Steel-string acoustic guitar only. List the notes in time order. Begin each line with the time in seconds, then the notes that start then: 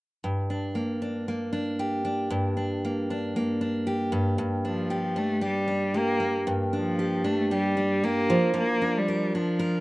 0.24 G2
0.50 D4
0.75 A#3
1.02 D4
1.28 A#3
1.53 D4
1.79 G4
2.05 D4
2.30 G2
2.57 D4
2.85 A#3
3.10 D4
3.36 A#3
3.61 D4
3.87 G4
4.12 G2
4.38 G2
4.65 D4
4.90 G4
5.16 D4
5.41 G4
5.68 D4
5.94 G4
6.20 A#3
6.47 G2
6.73 D4
6.99 G4
7.24 D4
7.51 G4
7.77 D4
8.04 G4
8.30 F3
8.54 F3
8.82 D4
9.08 A#4
9.35 D4
9.59 A#4